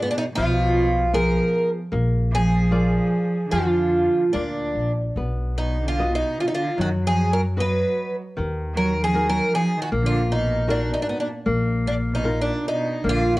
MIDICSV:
0, 0, Header, 1, 5, 480
1, 0, Start_track
1, 0, Tempo, 775194
1, 1195, Time_signature, 4, 2, 24, 8
1, 1195, Tempo, 808625
1, 4555, Tempo, 779221
1, 8133, End_track
2, 0, Start_track
2, 0, Title_t, "Nylon-string guitar"
2, 0, Program_c, 0, 24
2, 0, Note_on_c, 0, 59, 54
2, 0, Note_on_c, 0, 65, 54
2, 0, Note_on_c, 0, 68, 57
2, 135, Note_off_c, 0, 59, 0
2, 136, Note_off_c, 0, 65, 0
2, 137, Note_off_c, 0, 68, 0
2, 231, Note_on_c, 0, 53, 78
2, 692, Note_off_c, 0, 53, 0
2, 703, Note_on_c, 0, 59, 56
2, 703, Note_on_c, 0, 65, 56
2, 705, Note_on_c, 0, 68, 64
2, 1095, Note_off_c, 0, 65, 0
2, 1096, Note_off_c, 0, 59, 0
2, 1097, Note_off_c, 0, 68, 0
2, 1187, Note_on_c, 0, 58, 73
2, 1654, Note_off_c, 0, 58, 0
2, 1658, Note_on_c, 0, 65, 51
2, 1661, Note_on_c, 0, 70, 46
2, 1664, Note_on_c, 0, 74, 60
2, 2043, Note_off_c, 0, 65, 0
2, 2044, Note_off_c, 0, 70, 0
2, 2047, Note_off_c, 0, 74, 0
2, 2140, Note_on_c, 0, 53, 66
2, 2610, Note_off_c, 0, 53, 0
2, 2624, Note_on_c, 0, 65, 45
2, 2624, Note_on_c, 0, 70, 45
2, 2627, Note_on_c, 0, 74, 58
2, 3017, Note_off_c, 0, 70, 0
2, 3018, Note_off_c, 0, 65, 0
2, 3019, Note_off_c, 0, 74, 0
2, 3120, Note_on_c, 0, 59, 61
2, 3590, Note_off_c, 0, 59, 0
2, 3601, Note_on_c, 0, 66, 49
2, 3606, Note_on_c, 0, 71, 40
2, 3608, Note_on_c, 0, 75, 60
2, 3985, Note_off_c, 0, 66, 0
2, 3987, Note_off_c, 0, 71, 0
2, 3989, Note_off_c, 0, 75, 0
2, 4074, Note_on_c, 0, 54, 66
2, 4535, Note_off_c, 0, 54, 0
2, 4542, Note_on_c, 0, 66, 54
2, 4546, Note_on_c, 0, 71, 50
2, 4548, Note_on_c, 0, 75, 67
2, 4935, Note_off_c, 0, 66, 0
2, 4936, Note_off_c, 0, 75, 0
2, 4937, Note_off_c, 0, 71, 0
2, 5034, Note_on_c, 0, 51, 64
2, 5499, Note_off_c, 0, 51, 0
2, 5507, Note_on_c, 0, 63, 50
2, 5513, Note_on_c, 0, 66, 50
2, 5517, Note_on_c, 0, 70, 58
2, 5889, Note_off_c, 0, 63, 0
2, 5892, Note_off_c, 0, 66, 0
2, 5894, Note_off_c, 0, 70, 0
2, 5989, Note_on_c, 0, 58, 75
2, 6447, Note_off_c, 0, 58, 0
2, 6456, Note_on_c, 0, 63, 59
2, 6459, Note_on_c, 0, 66, 56
2, 6463, Note_on_c, 0, 70, 69
2, 6840, Note_off_c, 0, 63, 0
2, 6843, Note_off_c, 0, 66, 0
2, 6844, Note_off_c, 0, 70, 0
2, 6938, Note_on_c, 0, 58, 74
2, 7409, Note_off_c, 0, 58, 0
2, 7418, Note_on_c, 0, 63, 51
2, 7422, Note_on_c, 0, 65, 44
2, 7423, Note_on_c, 0, 70, 62
2, 7810, Note_off_c, 0, 63, 0
2, 7813, Note_off_c, 0, 65, 0
2, 7813, Note_off_c, 0, 70, 0
2, 7913, Note_on_c, 0, 58, 78
2, 8133, Note_off_c, 0, 58, 0
2, 8133, End_track
3, 0, Start_track
3, 0, Title_t, "Twelve-string acoustic guitar"
3, 0, Program_c, 1, 25
3, 14, Note_on_c, 1, 59, 83
3, 63, Note_off_c, 1, 59, 0
3, 65, Note_on_c, 1, 62, 83
3, 107, Note_off_c, 1, 62, 0
3, 109, Note_on_c, 1, 63, 87
3, 142, Note_off_c, 1, 63, 0
3, 219, Note_on_c, 1, 65, 110
3, 706, Note_off_c, 1, 65, 0
3, 709, Note_on_c, 1, 70, 100
3, 1048, Note_off_c, 1, 70, 0
3, 1443, Note_on_c, 1, 68, 92
3, 2136, Note_on_c, 1, 65, 91
3, 2172, Note_off_c, 1, 68, 0
3, 2616, Note_off_c, 1, 65, 0
3, 2619, Note_on_c, 1, 62, 63
3, 2967, Note_off_c, 1, 62, 0
3, 3360, Note_on_c, 1, 63, 71
3, 3527, Note_off_c, 1, 63, 0
3, 3538, Note_on_c, 1, 65, 81
3, 3697, Note_off_c, 1, 65, 0
3, 3700, Note_on_c, 1, 63, 83
3, 3848, Note_off_c, 1, 63, 0
3, 3851, Note_on_c, 1, 65, 74
3, 3890, Note_off_c, 1, 65, 0
3, 3894, Note_on_c, 1, 63, 68
3, 3931, Note_off_c, 1, 63, 0
3, 3935, Note_on_c, 1, 65, 82
3, 4090, Note_off_c, 1, 65, 0
3, 4093, Note_on_c, 1, 66, 86
3, 4134, Note_off_c, 1, 66, 0
3, 4245, Note_on_c, 1, 68, 97
3, 4398, Note_off_c, 1, 68, 0
3, 4401, Note_on_c, 1, 70, 90
3, 4443, Note_off_c, 1, 70, 0
3, 4563, Note_on_c, 1, 71, 97
3, 4898, Note_off_c, 1, 71, 0
3, 5282, Note_on_c, 1, 70, 95
3, 5443, Note_off_c, 1, 70, 0
3, 5447, Note_on_c, 1, 68, 98
3, 5603, Note_off_c, 1, 68, 0
3, 5605, Note_on_c, 1, 70, 97
3, 5759, Note_off_c, 1, 70, 0
3, 5762, Note_on_c, 1, 68, 101
3, 5919, Note_off_c, 1, 68, 0
3, 5928, Note_on_c, 1, 66, 86
3, 5968, Note_off_c, 1, 66, 0
3, 6078, Note_on_c, 1, 65, 91
3, 6234, Note_off_c, 1, 65, 0
3, 6236, Note_on_c, 1, 63, 89
3, 6471, Note_off_c, 1, 63, 0
3, 6473, Note_on_c, 1, 62, 77
3, 6600, Note_off_c, 1, 62, 0
3, 6617, Note_on_c, 1, 63, 71
3, 6663, Note_off_c, 1, 63, 0
3, 6669, Note_on_c, 1, 62, 68
3, 6710, Note_off_c, 1, 62, 0
3, 6713, Note_on_c, 1, 59, 59
3, 6765, Note_off_c, 1, 59, 0
3, 6779, Note_on_c, 1, 62, 65
3, 6826, Note_off_c, 1, 62, 0
3, 7193, Note_on_c, 1, 62, 69
3, 7235, Note_off_c, 1, 62, 0
3, 7362, Note_on_c, 1, 63, 79
3, 7519, Note_off_c, 1, 63, 0
3, 7526, Note_on_c, 1, 62, 78
3, 7682, Note_off_c, 1, 62, 0
3, 7690, Note_on_c, 1, 63, 81
3, 7930, Note_off_c, 1, 63, 0
3, 7944, Note_on_c, 1, 65, 106
3, 8094, Note_off_c, 1, 65, 0
3, 8113, Note_on_c, 1, 66, 91
3, 8133, Note_off_c, 1, 66, 0
3, 8133, End_track
4, 0, Start_track
4, 0, Title_t, "Cello"
4, 0, Program_c, 2, 42
4, 6, Note_on_c, 2, 44, 66
4, 56, Note_off_c, 2, 44, 0
4, 59, Note_on_c, 2, 46, 64
4, 98, Note_off_c, 2, 46, 0
4, 102, Note_on_c, 2, 47, 72
4, 158, Note_off_c, 2, 47, 0
4, 210, Note_on_c, 2, 47, 96
4, 671, Note_off_c, 2, 47, 0
4, 693, Note_on_c, 2, 53, 83
4, 1040, Note_off_c, 2, 53, 0
4, 1422, Note_on_c, 2, 53, 100
4, 2117, Note_off_c, 2, 53, 0
4, 2126, Note_on_c, 2, 50, 77
4, 2594, Note_off_c, 2, 50, 0
4, 2611, Note_on_c, 2, 46, 50
4, 2964, Note_off_c, 2, 46, 0
4, 3353, Note_on_c, 2, 47, 60
4, 3507, Note_off_c, 2, 47, 0
4, 3517, Note_on_c, 2, 50, 65
4, 3670, Note_off_c, 2, 50, 0
4, 3677, Note_on_c, 2, 47, 64
4, 3829, Note_off_c, 2, 47, 0
4, 3837, Note_on_c, 2, 50, 70
4, 3879, Note_off_c, 2, 50, 0
4, 3882, Note_on_c, 2, 47, 57
4, 3916, Note_off_c, 2, 47, 0
4, 3920, Note_on_c, 2, 50, 67
4, 4063, Note_off_c, 2, 50, 0
4, 4066, Note_on_c, 2, 51, 86
4, 4140, Note_off_c, 2, 51, 0
4, 4223, Note_on_c, 2, 53, 80
4, 4376, Note_off_c, 2, 53, 0
4, 4389, Note_on_c, 2, 54, 77
4, 4461, Note_off_c, 2, 54, 0
4, 4541, Note_on_c, 2, 54, 78
4, 4887, Note_off_c, 2, 54, 0
4, 5268, Note_on_c, 2, 54, 100
4, 5420, Note_off_c, 2, 54, 0
4, 5437, Note_on_c, 2, 53, 84
4, 5584, Note_off_c, 2, 53, 0
4, 5586, Note_on_c, 2, 54, 90
4, 5737, Note_off_c, 2, 54, 0
4, 5742, Note_on_c, 2, 53, 86
4, 5893, Note_off_c, 2, 53, 0
4, 5899, Note_on_c, 2, 51, 67
4, 5972, Note_off_c, 2, 51, 0
4, 6058, Note_on_c, 2, 50, 81
4, 6208, Note_off_c, 2, 50, 0
4, 6228, Note_on_c, 2, 47, 69
4, 6446, Note_off_c, 2, 47, 0
4, 6463, Note_on_c, 2, 46, 66
4, 6578, Note_off_c, 2, 46, 0
4, 6581, Note_on_c, 2, 47, 64
4, 6641, Note_off_c, 2, 47, 0
4, 6650, Note_on_c, 2, 46, 57
4, 6694, Note_off_c, 2, 46, 0
4, 6697, Note_on_c, 2, 44, 54
4, 6746, Note_off_c, 2, 44, 0
4, 6750, Note_on_c, 2, 46, 59
4, 6807, Note_off_c, 2, 46, 0
4, 7189, Note_on_c, 2, 46, 67
4, 7260, Note_off_c, 2, 46, 0
4, 7345, Note_on_c, 2, 47, 71
4, 7495, Note_off_c, 2, 47, 0
4, 7507, Note_on_c, 2, 46, 62
4, 7657, Note_off_c, 2, 46, 0
4, 7682, Note_on_c, 2, 47, 81
4, 7902, Note_off_c, 2, 47, 0
4, 7920, Note_on_c, 2, 50, 83
4, 8067, Note_off_c, 2, 50, 0
4, 8091, Note_on_c, 2, 51, 81
4, 8133, Note_off_c, 2, 51, 0
4, 8133, End_track
5, 0, Start_track
5, 0, Title_t, "Upright bass"
5, 0, Program_c, 3, 32
5, 235, Note_on_c, 3, 35, 105
5, 860, Note_off_c, 3, 35, 0
5, 1192, Note_on_c, 3, 34, 107
5, 1811, Note_off_c, 3, 34, 0
5, 2142, Note_on_c, 3, 41, 81
5, 2456, Note_off_c, 3, 41, 0
5, 2627, Note_on_c, 3, 38, 75
5, 2849, Note_off_c, 3, 38, 0
5, 2870, Note_on_c, 3, 34, 78
5, 3092, Note_off_c, 3, 34, 0
5, 3112, Note_on_c, 3, 35, 90
5, 3740, Note_off_c, 3, 35, 0
5, 4079, Note_on_c, 3, 42, 88
5, 4696, Note_off_c, 3, 42, 0
5, 5044, Note_on_c, 3, 39, 97
5, 5659, Note_off_c, 3, 39, 0
5, 5991, Note_on_c, 3, 34, 99
5, 6608, Note_off_c, 3, 34, 0
5, 6941, Note_on_c, 3, 34, 101
5, 7573, Note_off_c, 3, 34, 0
5, 7912, Note_on_c, 3, 34, 92
5, 8133, Note_off_c, 3, 34, 0
5, 8133, End_track
0, 0, End_of_file